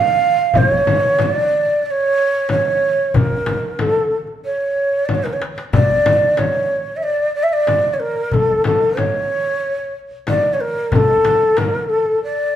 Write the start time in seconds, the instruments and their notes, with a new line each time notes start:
Already playing: ney F5
0.21 darbuka ka
0.54 ney C5, darbuka dum, frame drum
0.69 ney C#5
0.87 frame drum
1.19 ney D5, darbuka tek, frame drum
1.86 ney D5
1.91 ney C#5
2.00 darbuka ka
2.32 darbuka ka
2.49 ney C#5, darbuka tek, frame drum
2.82 darbuka ka
3.14 ney A#4, darbuka dum, frame drum
3.31 darbuka ka
3.46 darbuka tek, frame drum
3.79 ney A4, darbuka tek, frame drum
3.95 darbuka ka
4.11 darbuka ka
4.27 darbuka ka
4.44 ney C#5, darbuka ka
4.76 darbuka ka
4.92 darbuka ka
5.05 ney D5, darbuka tek, frame drum
5.15 ney C#5
5.24 ney A#4, darbuka ka
5.33 ney C#5
5.42 darbuka tek
5.58 darbuka ka
5.73 ney D5, frame drum, darbuka dum
6.06 darbuka tek, frame drum
6.37 ney C#5, darbuka tek, frame drum
6.96 ney E5
7.03 ney D5
7.20 darbuka ka
7.35 ney D5
7.43 ney E5
7.49 ney D5 E5, darbuka ka
7.67 darbuka tek, frame drum
7.94 ney C#5
8.00 ney A#4, darbuka ka
8.32 ney A4, darbuka dum, frame drum
8.64 ney A4, darbuka tek, frame drum
8.97 ney C#5, darbuka tek, frame drum
9.78 darbuka ka
10.11 darbuka ka
10.27 ney D5, darbuka tek, frame drum
10.53 ney C#5
10.60 ney A#4, darbuka ka
10.92 ney A4 A#4, darbuka dum, frame drum
11.25 darbuka tek, frame drum
11.57 ney A#4, darbuka tek, frame drum
11.89 ney A4
12.24 ney D5